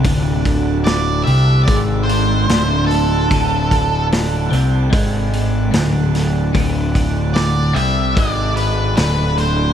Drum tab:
HH |oooooooo|oooooooo|oooooooo|
SD |--o---o-|--o---oo|--o---o-|
BD |oo--o---|oo--o---|oo--o---|